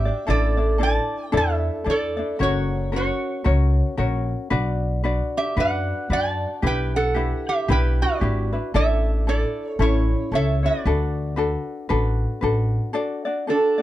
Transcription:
0.00 0.25 G4 medium
0.00 0.25 E5 medium
0.05 0.26 D4 soft
0.05 0.27 G4 soft
0.05 0.27 D5 medium
0.27 0.97 A1 medium
0.27 0.58 D4 medium
0.27 0.57 E4 medium
0.27 0.58 A4 medium
0.27 0.78 A4 medium
0.27 0.56 D5 medium
0.27 0.83 D5 medium
0.57 0.78 D4 soft
0.57 0.79 E4 soft
0.57 0.79 D5 soft
0.78 1.31 D4 medium
0.78 1.32 E4 medium
0.78 1.31 A4 medium
0.78 1.32 D5 medium
0.83 1.32 D5 medium
0.83 1.25 A5 loud
1.25 1.36 G5 loud
1.32 1.68 E2 loud
1.32 1.84 D4 medium
1.32 1.85 E4 medium
1.32 1.83 A4 medium
1.32 1.85 D5 medium
1.37 1.85 A4 medium
1.37 1.90 E5 loud
1.84 2.21 E2 medium
1.84 2.17 D4 medium
1.84 2.17 E4 medium
1.84 2.16 A4 medium
1.84 2.16 D5 medium
1.90 2.38 A4 medium
1.90 2.37 D5 medium
2.17 2.39 D4 soft
2.17 2.40 E4 soft
2.17 2.39 D5 medium
2.39 3.09 F#1 medium
2.39 2.92 C#4 medium
2.39 2.93 F#4 medium
2.39 2.91 A#4 medium
2.39 2.92 C#5 medium
2.39 2.95 C#5 medium
2.44 2.91 F#4 medium
2.92 3.43 C#4 medium
2.92 3.44 F#4 medium
2.92 3.43 A#4 medium
2.92 3.44 C#5 medium
2.96 4.28 F#4 medium
2.96 4.27 C#5 medium
3.44 3.80 C#2 medium
3.44 3.96 C#4 medium
3.44 3.98 F#4 medium
3.44 3.96 A#4 medium
3.44 3.98 C#5 medium
3.97 4.32 A#1 medium
3.97 4.50 C#4 medium
3.97 4.51 F#4 medium
3.97 4.50 A#4 medium
3.97 4.51 C#5 medium
4.50 5.20 B1 medium
4.50 5.04 D4 medium
4.50 5.03 F#4 medium
4.50 5.03 B4 medium
4.50 5.05 D5 medium
5.04 5.57 D4 medium
5.04 5.56 F#4 medium
5.04 5.56 B4 medium
5.04 5.58 D5 medium
5.37 5.56 G4 medium
5.37 5.59 E5 medium
5.57 5.91 F#2 medium
5.57 6.10 D4 medium
5.57 6.10 F#4 medium
5.57 6.10 B4 medium
5.57 6.08 B4 medium
5.57 6.11 D5 medium
5.57 6.13 F#5 medium
6.10 6.44 F#2 medium
6.10 6.63 D4 medium
6.10 6.62 F#4 medium
6.10 6.62 B4 medium
6.10 6.63 D5 medium
6.10 6.61 D5 medium
6.10 6.66 A5 loud
6.62 7.31 B1 medium
6.62 7.15 D4 medium
6.62 7.16 E4 medium
6.62 7.13 G4 medium
6.62 7.15 B4 medium
6.67 6.94 B4 medium
6.67 6.96 G5 loud
6.96 7.44 A4 medium
6.96 7.49 F#5 loud
7.14 7.69 D4 medium
7.14 7.69 E4 medium
7.14 7.67 G4 medium
7.14 7.69 B4 medium
7.49 7.68 G4 medium
7.49 7.70 E5 medium
7.68 8.03 B1 loud
7.68 8.20 D4 medium
7.68 8.21 E4 medium
7.68 8.20 G4 medium
7.68 8.22 B4 medium
7.68 7.99 B4 medium
7.68 8.02 G5 loud
8.02 8.71 F#4 medium
8.02 8.77 D5 medium
8.21 8.55 G#1 medium
8.21 8.52 D4 medium
8.21 8.52 E4 medium
8.21 8.52 G4 medium
8.21 8.51 B4 medium
8.53 8.73 D4 soft
8.53 8.74 E4 soft
8.53 8.74 B4 medium
8.74 9.43 A1 loud
8.74 9.27 D4 medium
8.74 9.27 E4 medium
8.74 9.27 A4 medium
8.74 9.24 A4 medium
8.74 9.27 D5 medium
8.74 9.29 E5 loud
9.27 9.80 D4 medium
9.27 9.79 E4 medium
9.27 9.79 A4 medium
9.27 9.77 A4 medium
9.27 9.80 D5 medium
9.27 9.68 D5 medium
9.68 9.82 C#5 medium
9.79 10.13 A1 medium
9.79 10.32 C#4 medium
9.79 10.32 E4 medium
9.79 10.30 E4 medium
9.79 10.31 A4 medium
9.79 10.32 C#5 medium
9.79 10.35 C#5 medium
10.32 10.66 C#2 medium
10.32 10.64 C#4 medium
10.32 10.63 E4 medium
10.32 10.63 A4 medium
10.32 10.62 C#5 medium
10.32 10.65 E5 medium
10.36 10.63 A4 medium
10.63 10.86 C#4 soft
10.63 10.85 E4 soft
10.63 10.85 C#5 soft
10.63 12.40 D5 medium
10.67 12.41 F#4 medium
10.85 11.54 D2 medium
10.85 11.37 D4 medium
10.85 11.37 F#4 medium
10.85 11.38 A4 medium
10.85 11.35 B4 medium
11.36 11.89 D4 medium
11.36 11.89 F#4 medium
11.36 11.90 A4 medium
11.36 11.88 B4 medium
11.89 12.25 A1 loud
11.89 12.42 D4 medium
11.89 12.42 F#4 medium
11.89 12.43 A4 medium
11.89 12.40 B4 medium
12.41 12.77 A1 medium
12.41 12.93 D4 medium
12.41 12.94 F#4 medium
12.41 12.93 A4 medium
12.41 12.94 B4 medium
12.93 13.26 D4 medium
12.93 13.25 F#4 medium
12.93 13.26 A4 medium
12.93 13.24 D5 medium
13.25 13.47 D4 soft
13.25 13.48 F#4 soft
13.25 13.48 D5 medium
13.47 13.79 D4 medium
13.47 13.82 D4 medium
13.47 13.78 F#4 medium
13.47 13.79 A4 medium
13.47 13.82 A4 medium
13.47 13.77 D5 medium
13.78 13.82 D5 medium

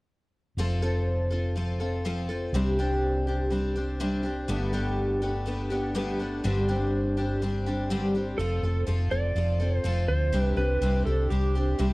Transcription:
0.57 2.49 F1 medium
0.57 0.82 F3 medium
0.57 0.82 C4 medium
0.57 0.82 F4 medium
0.57 0.81 A4 medium
0.82 1.32 F3 medium
0.82 1.32 C4 medium
0.82 1.31 F4 medium
0.82 1.29 A4 medium
1.31 1.56 C4 soft
1.31 1.56 F4 soft
1.31 1.55 A4 medium
1.56 1.80 F3 medium
1.56 1.81 C4 medium
1.56 1.79 F4 medium
1.56 1.79 A4 medium
1.80 2.04 C4 soft
1.80 2.05 F4 soft
1.80 2.04 A4 medium
2.05 2.29 F3 medium
2.05 2.29 C4 medium
2.05 2.29 F4 medium
2.05 2.28 A4 medium
2.29 2.54 C4 soft
2.29 2.54 F4 soft
2.29 2.53 A4 medium
2.53 4.45 C2 medium
2.53 2.78 C3 medium
2.53 2.78 G3 medium
2.53 2.79 C4 medium
2.53 2.78 D4 medium
2.53 2.78 G4 medium
2.79 3.28 C3 medium
2.79 3.50 G3 medium
2.79 3.28 C4 medium
2.79 3.28 D4 medium
2.79 3.27 G4 medium
3.27 3.50 C4 soft
3.27 3.51 D4 soft
3.27 3.51 G4 medium
3.50 3.75 G3 medium
3.50 3.76 C4 medium
3.50 3.76 D4 medium
3.50 3.75 G4 medium
3.76 3.99 C4 soft
3.76 4.00 D4 soft
3.76 4.00 G4 medium
4.00 4.24 C3 medium
4.00 4.25 G3 medium
4.00 4.25 C4 medium
4.00 4.24 D4 medium
4.00 4.22 G4 medium
4.23 4.49 C4 soft
4.23 4.48 D4 soft
4.23 4.48 G4 soft
4.48 6.40 G1 medium
4.48 4.73 G2 medium
4.48 4.73 D3 medium
4.48 4.73 A3 medium
4.48 4.73 B3 medium
4.48 4.72 D4 medium
4.48 4.72 G4 medium
4.73 5.23 G2 medium
4.73 5.22 D3 medium
4.73 5.22 A3 medium
4.73 5.22 B3 medium
4.73 5.22 D4 medium
4.73 5.22 G4 medium
5.22 5.45 A3 soft
5.22 5.46 B3 medium
5.22 5.46 D4 medium
5.22 5.46 G4 medium
5.46 5.71 A3 medium
5.46 5.71 B3 medium
5.46 5.70 D4 medium
5.46 5.69 G4 medium
5.70 5.95 A3 soft
5.70 5.95 B3 soft
5.70 5.95 D4 soft
5.70 5.95 G4 medium
5.95 6.19 G2 medium
5.95 6.19 D3 medium
5.95 6.20 A3 medium
5.95 6.20 B3 medium
5.95 6.19 D4 medium
5.95 6.18 G4 medium
6.19 6.44 A3 soft
6.19 6.44 B3 soft
6.19 6.44 D4 soft
6.19 6.44 G4 soft
6.44 8.35 G1 medium
6.44 6.68 G2 medium
6.44 6.68 D3 medium
6.44 6.68 G3 medium
6.44 6.68 C4 medium
6.44 6.67 D4 medium
6.44 6.67 G4 medium
6.69 7.18 G2 medium
6.69 7.18 D3 medium
6.69 7.17 G3 medium
6.69 7.17 C4 medium
6.69 7.16 D4 medium
6.69 7.16 G4 medium
7.17 7.41 G3 soft
7.17 7.41 C4 soft
7.17 7.42 D4 medium
7.17 7.41 G4 medium
7.42 7.66 G3 medium
7.42 7.66 C4 medium
7.42 7.66 D4 medium
7.42 7.65 G4 medium
7.66 7.90 G3 soft
7.66 7.90 C4 soft
7.66 7.90 D4 medium
7.66 7.90 G4 medium
7.90 8.14 G2 medium
7.90 8.14 D3 medium
7.90 8.15 G3 medium
7.90 8.15 C4 medium
7.90 8.14 D4 medium
7.90 8.13 G4 medium
8.15 8.39 G3 soft
8.15 8.39 C4 soft
8.15 8.39 D4 soft
8.15 8.39 G4 medium
8.38 8.60 F1 medium
8.38 8.63 F3 medium
8.38 8.64 C4 medium
8.38 8.63 F4 medium
8.38 8.83 A4 medium
8.38 8.62 A4 medium
8.63 8.84 F1 medium
8.63 8.86 C4 soft
8.63 8.86 F4 soft
8.63 8.87 A4 soft
8.87 9.08 F1 medium
8.87 9.11 F3 medium
8.87 9.11 C4 medium
8.87 9.11 F4 medium
8.87 9.10 A4 medium
9.11 9.33 F1 medium
9.11 9.35 C4 soft
9.11 9.36 F4 soft
9.11 9.36 A4 soft
9.11 9.77 D5 loud
9.35 9.78 F1 medium
9.35 9.60 F3 medium
9.35 9.60 C4 medium
9.35 9.60 F4 medium
9.35 9.59 A4 medium
9.60 9.84 C4 soft
9.60 9.84 F4 soft
9.60 9.84 A4 medium
9.77 10.05 C5 loud
9.84 10.06 F1 medium
9.84 10.33 F3 medium
9.84 10.32 C4 medium
9.84 10.33 F4 medium
9.84 10.33 A4 medium
10.08 10.30 D2 medium
10.08 10.42 C5 medium
10.32 10.54 C2 medium
10.32 10.57 C3 medium
10.32 10.57 G3 medium
10.32 10.57 C4 medium
10.32 10.57 D4 medium
10.32 10.55 G4 medium
10.42 10.54 B4 medium
10.57 10.78 C2 medium
10.57 10.82 C4 soft
10.57 10.82 D4 soft
10.57 10.81 G4 soft
10.57 11.05 B4 medium
10.81 11.03 C2 medium
10.81 11.06 C3 medium
10.81 11.06 G3 medium
10.81 11.07 C4 medium
10.81 11.07 D4 medium
10.81 11.05 G4 medium
11.05 11.27 C2 medium
11.05 11.30 C4 soft
11.05 11.31 D4 soft
11.05 11.31 G4 soft
11.05 11.28 A4 medium
11.30 11.73 C2 medium
11.30 11.55 G3 medium
11.30 11.55 C4 medium
11.30 11.55 D4 medium
11.30 11.93 G4 medium
11.30 11.54 G4 medium
11.55 11.78 C4 soft
11.55 11.78 D4 soft
11.55 11.79 G4 medium
11.79 11.93 C2 medium
11.79 11.93 C3 medium
11.79 11.93 G3 medium
11.79 11.93 C4 medium
11.79 11.93 D4 medium
11.79 11.93 G4 medium

